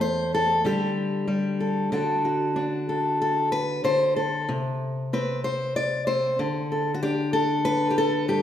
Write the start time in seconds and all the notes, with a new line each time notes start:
Already playing: E2 A3 C4
0.01 C5
0.34 A4
0.65 D3 G3 G4
1.28 G3
1.60 A4
1.92 D3 D4 F#4 A4
2.25 F#4
2.56 D4
2.89 A4
3.22 A4
3.52 B4
3.84 D3 C5
4.16 A4
4.49 C3
5.13 C4 B4
5.44 C5
5.76 D5
6.07 C3 C5
6.39 D3
6.72 A4
6.94 F#4
7.03 D4 G4
7.33 A4
7.65 B4
7.91 G4
7.98 A4
8.28 G2 G4